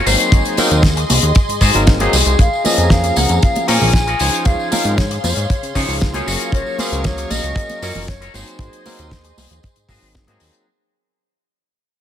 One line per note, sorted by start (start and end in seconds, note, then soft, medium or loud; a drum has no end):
0.06 0.16 G#1 loud
0.06 0.55 F#3 medium
0.06 0.55 A#3 medium
0.06 0.55 C4 medium
0.06 0.79 D#4 loud
0.06 0.55 D#4 medium
0.06 0.79 F#4 medium
0.06 0.79 G#4 medium
0.06 6.23 G#4 medium
0.06 0.79 C5 loud
0.06 0.55 C5 medium
0.06 2.37 D#5 medium
0.06 2.37 C6 medium
0.06 open hi-hat loud
0.06 tambourine medium
0.20 closed hi-hat medium
0.20 tambourine soft
0.32 0.42 G#1 loud
0.32 kick loud
0.32 closed hi-hat medium
0.32 tambourine soft
0.45 closed hi-hat soft
0.45 tambourine soft
0.57 0.82 F#3 medium
0.57 0.82 A#3 medium
0.57 0.82 C4 medium
0.57 0.82 D#4 medium
0.57 0.83 A#4 loud
0.57 open hi-hat loud
0.57 tambourine medium
0.57 muted conga medium
0.57 high conga medium
0.71 1.05 D#2 medium
0.71 closed hi-hat medium
0.71 tambourine soft
0.83 kick loud
0.83 snare loud
0.83 closed hi-hat medium
0.83 tambourine soft
0.83 low conga medium
0.97 muted clean electric guitar stroke medium
0.97 closed hi-hat medium
0.97 tambourine soft
1.10 1.19 C2 medium
1.10 muted clean electric guitar stroke loud
1.10 open hi-hat loud
1.10 tambourine medium
1.10 high conga loud
1.22 1.32 D#2 medium
1.22 muted clean electric guitar stroke soft
1.22 closed hi-hat medium
1.22 tambourine soft
1.35 muted clean electric guitar stroke soft
1.35 kick loud
1.35 closed hi-hat medium
1.35 tambourine soft
1.48 1.59 G#2 soft
1.48 closed hi-hat medium
1.48 tambourine soft
1.61 1.71 G#2 medium
1.61 1.81 D#4 loud
1.61 1.81 F#4 medium
1.61 1.81 G#4 loud
1.61 1.81 C5 loud
1.61 kick medium
1.61 open hi-hat loud
1.61 tambourine medium
1.74 2.08 G#1 medium
1.74 1.97 F#3 medium
1.74 1.97 A#3 medium
1.74 1.98 C4 medium
1.74 1.98 D#4 medium
1.74 1.98 A#4 medium
1.74 closed hi-hat soft
1.74 tambourine soft
1.87 kick loud
1.87 snare loud
1.87 closed hi-hat medium
1.87 tambourine soft
1.99 2.15 F#3 medium
1.99 2.16 A#3 medium
1.99 2.16 C4 medium
1.99 2.39 D#4 medium
1.99 2.16 D#4 medium
1.99 2.39 F#4 medium
1.99 2.39 G#4 medium
1.99 2.16 G#4 loud
1.99 2.39 C5 medium
1.99 closed hi-hat medium
1.99 tambourine soft
1.99 muted conga medium
2.13 2.23 C2 loud
2.13 open hi-hat loud
2.13 tambourine medium
2.26 2.36 C2 loud
2.26 closed hi-hat soft
2.26 tambourine soft
2.39 2.49 A#1 loud
2.39 8.30 F5 medium
2.39 2.67 F5 loud
2.39 4.19 A#5 medium
2.39 kick loud
2.39 closed hi-hat medium
2.39 tambourine soft
2.53 tambourine soft
2.64 3.65 F3 medium
2.64 3.65 A#3 medium
2.64 3.66 C#4 medium
2.64 3.66 G#4 loud
2.64 2.93 D#5 medium
2.64 open hi-hat loud
2.64 tambourine medium
2.64 muted conga medium
2.64 high conga medium
2.78 3.11 F2 medium
2.78 closed hi-hat medium
2.78 tambourine soft
2.90 3.18 F5 loud
2.90 kick loud
2.90 snare loud
2.90 closed hi-hat medium
2.90 tambourine soft
2.90 low conga medium
3.03 muted clean electric guitar stroke medium
3.03 closed hi-hat medium
3.03 tambourine soft
3.16 3.26 C#2 medium
3.16 3.42 F#5 loud
3.16 muted clean electric guitar stroke loud
3.16 open hi-hat loud
3.16 tambourine medium
3.16 high conga loud
3.29 3.39 F2 medium
3.29 muted clean electric guitar stroke soft
3.29 closed hi-hat medium
3.29 tambourine soft
3.42 3.69 F5 loud
3.42 kick loud
3.42 closed hi-hat medium
3.42 tambourine soft
3.55 closed hi-hat medium
3.55 tambourine soft
3.55 muted conga medium
3.68 3.78 A#2 medium
3.68 3.92 F3 loud
3.68 3.92 A#3 medium
3.68 3.92 C4 medium
3.68 3.93 C#4 medium
3.68 3.88 F4 loud
3.68 3.88 G#4 medium
3.68 3.88 A#4 loud
3.68 3.93 A#4 loud
3.68 3.88 C#5 loud
3.68 4.47 G#5 loud
3.68 open hi-hat loud
3.68 tambourine medium
3.81 4.15 A#1 medium
3.81 tambourine soft
3.81 muted conga medium
3.81 low conga medium
3.93 kick loud
3.93 snare loud
3.93 tambourine soft
4.07 4.19 F4 medium
4.07 4.19 G#4 medium
4.07 4.20 A#4 medium
4.07 4.20 C#5 loud
4.07 closed hi-hat soft
4.07 tambourine soft
4.19 4.30 C#2 loud
4.19 4.69 F3 medium
4.19 4.69 C#4 medium
4.19 4.69 D#4 medium
4.19 4.92 F4 loud
4.19 4.93 G#4 medium
4.19 4.93 C5 medium
4.19 4.93 C#5 loud
4.19 6.25 C6 medium
4.19 4.69 C6 medium
4.19 open hi-hat loud
4.19 tambourine medium
4.33 closed hi-hat medium
4.33 tambourine soft
4.45 4.56 C#2 loud
4.45 4.71 F5 loud
4.45 kick loud
4.45 closed hi-hat medium
4.45 tambourine soft
4.59 tambourine soft
4.71 4.96 F3 medium
4.71 4.96 C4 medium
4.71 4.96 C#4 medium
4.71 4.96 D#4 medium
4.71 4.96 A#4 loud
4.71 4.99 F5 loud
4.71 open hi-hat loud
4.71 tambourine medium
4.71 muted conga medium
4.71 high conga medium
4.84 5.18 G#2 medium
4.84 closed hi-hat medium
4.84 tambourine soft
4.97 5.23 C#5 medium
4.97 kick loud
4.97 snare loud
4.97 closed hi-hat loud
4.97 tambourine soft
4.97 low conga medium
5.11 muted clean electric guitar stroke medium
5.11 closed hi-hat medium
5.11 tambourine soft
5.23 5.33 F2 medium
5.23 6.23 C#5 medium
5.23 muted clean electric guitar stroke loud
5.23 open hi-hat loud
5.23 tambourine medium
5.23 high conga medium
5.36 5.46 G#2 medium
5.36 muted clean electric guitar stroke soft
5.36 closed hi-hat medium
5.36 tambourine soft
5.50 kick loud
5.50 closed hi-hat medium
5.50 tambourine soft
5.63 5.73 C#3 soft
5.63 closed hi-hat medium
5.63 tambourine soft
5.75 5.85 C#3 medium
5.75 6.11 F3 medium
5.75 6.11 C#4 medium
5.75 6.11 D#4 medium
5.75 5.95 F4 loud
5.75 5.95 G#4 loud
5.75 6.12 G#4 medium
5.75 5.95 C5 loud
5.75 5.95 C#5 loud
5.75 kick medium
5.75 open hi-hat loud
5.75 tambourine medium
5.88 6.22 C#2 medium
5.88 tambourine soft
6.01 kick loud
6.01 snare loud
6.01 closed hi-hat medium
6.01 tambourine soft
6.14 6.75 F#3 medium
6.14 6.76 A#3 medium
6.14 6.76 C#4 medium
6.14 6.26 F4 loud
6.14 6.27 G#4 medium
6.14 6.76 G#4 medium
6.14 6.27 C5 medium
6.14 6.26 C#5 medium
6.14 6.76 F5 medium
6.14 closed hi-hat medium
6.14 tambourine soft
6.14 muted conga medium
6.27 6.37 F#1 loud
6.27 6.99 F4 loud
6.27 7.00 F#4 medium
6.27 7.00 A#4 medium
6.27 8.32 A#4 medium
6.27 7.00 C#5 loud
6.27 8.32 C#6 medium
6.27 open hi-hat loud
6.27 tambourine medium
6.41 closed hi-hat medium
6.41 tambourine soft
6.52 6.62 F#1 loud
6.52 6.80 C#5 loud
6.52 kick loud
6.52 closed hi-hat medium
6.52 tambourine soft
6.66 tambourine soft
6.78 7.79 F#3 medium
6.78 7.79 A#3 medium
6.78 7.79 C#4 medium
6.78 7.80 G#4 loud
6.78 7.04 C5 loud
6.78 7.79 F5 medium
6.78 open hi-hat loud
6.78 tambourine medium
6.78 muted conga medium
6.78 high conga medium
6.92 7.25 C#2 medium
6.92 closed hi-hat soft
6.92 tambourine soft
7.04 7.32 C#5 loud
7.04 kick loud
7.04 snare loud
7.04 closed hi-hat medium
7.04 tambourine soft
7.04 low conga medium
7.17 muted clean electric guitar stroke medium
7.17 closed hi-hat medium
7.17 tambourine soft
7.30 7.40 A#1 medium
7.30 8.10 D#5 loud
7.30 muted clean electric guitar stroke loud
7.30 open hi-hat loud
7.30 tambourine medium
7.30 high conga loud
7.43 7.53 C#2 medium
7.43 muted clean electric guitar stroke soft
7.43 closed hi-hat medium
7.43 tambourine soft
7.56 muted clean electric guitar stroke soft
7.56 kick loud
7.56 closed hi-hat medium
7.56 tambourine soft
7.69 closed hi-hat medium
7.69 tambourine soft
7.69 muted conga medium
7.82 7.92 F#2 medium
7.82 8.06 F#3 loud
7.82 8.06 A#3 medium
7.82 8.07 C#4 medium
7.82 8.02 F4 loud
7.82 8.07 F4 medium
7.82 8.02 F#4 loud
7.82 8.02 A#4 loud
7.82 8.07 A#4 loud
7.82 8.02 C#5 loud
7.82 open hi-hat loud
7.82 tambourine medium
7.95 8.29 F#1 medium
7.95 tambourine soft
7.95 muted conga medium
7.95 low conga medium
8.08 8.36 C#5 loud
8.08 kick loud
8.08 snare loud
8.08 closed hi-hat loud
8.08 tambourine soft
8.21 8.33 F4 loud
8.21 8.33 F#4 medium
8.21 8.34 A#4 medium
8.21 8.34 C#5 loud
8.21 closed hi-hat medium
8.21 tambourine soft
8.34 8.44 G#1 loud
8.34 8.83 F#3 medium
8.34 8.83 A#3 medium
8.34 8.83 C4 medium
8.34 9.06 D#4 loud
8.34 8.83 D#4 medium
8.34 9.07 F#4 medium
8.34 10.65 G#4 medium
8.34 9.07 G#4 loud
8.34 10.15 C5 loud
8.34 8.83 C5 medium
8.34 9.07 C5 medium
8.34 10.64 D#5 medium
8.34 10.65 C6 medium
8.34 open hi-hat loud
8.34 tambourine medium
8.48 closed hi-hat medium
8.48 tambourine soft
8.59 8.69 G#1 loud
8.59 kick loud
8.59 closed hi-hat medium
8.59 tambourine soft
8.73 closed hi-hat medium
8.73 tambourine soft
8.85 9.10 F#3 medium
8.85 9.10 A#3 medium
8.85 9.10 C4 medium
8.85 9.10 D#4 medium
8.85 9.10 A#4 loud
8.85 open hi-hat loud
8.85 tambourine medium
8.85 muted conga medium
8.85 high conga medium
8.99 9.32 D#2 medium
8.99 closed hi-hat medium
8.99 tambourine soft
9.11 kick loud
9.11 snare loud
9.11 closed hi-hat loud
9.11 low conga medium
9.24 muted clean electric guitar stroke medium
9.24 closed hi-hat medium
9.24 tambourine soft
9.37 9.47 C2 medium
9.37 muted clean electric guitar stroke loud
9.37 open hi-hat loud
9.37 tambourine medium
9.37 high conga medium
9.50 9.60 D#2 medium
9.50 muted clean electric guitar stroke soft
9.50 closed hi-hat medium
9.50 tambourine soft
9.50 low conga medium
9.63 kick loud
9.63 closed hi-hat medium
9.63 tambourine soft
9.76 9.87 G#2 soft
9.76 closed hi-hat medium
9.76 tambourine soft
9.88 9.99 G#2 medium
9.88 10.25 F#3 medium
9.88 10.25 A#3 medium
9.88 10.25 C4 medium
9.88 10.08 D#4 loud
9.88 10.25 D#4 medium
9.88 10.08 F#4 loud
9.88 10.09 G#4 loud
9.88 10.25 G#4 medium
9.88 10.09 C5 loud
9.88 kick medium
9.88 open hi-hat loud
9.88 tambourine medium
10.02 10.27 G#1 medium
10.02 tambourine soft
10.15 kick loud
10.15 snare loud
10.15 closed hi-hat loud
10.15 tambourine soft
10.27 10.38 G#2 medium
10.27 10.65 F#3 medium
10.27 10.65 A#3 medium
10.27 10.65 C4 medium
10.27 10.67 D#4 medium
10.27 10.65 D#4 medium
10.27 10.67 F#4 medium
10.27 10.67 G#4 medium
10.27 10.66 G#4 loud
10.27 10.67 C5 medium
10.27 closed hi-hat medium
10.27 tambourine soft
10.27 muted conga medium
10.40 10.51 D#2 loud
10.40 open hi-hat loud
10.40 tambourine medium
10.53 closed hi-hat medium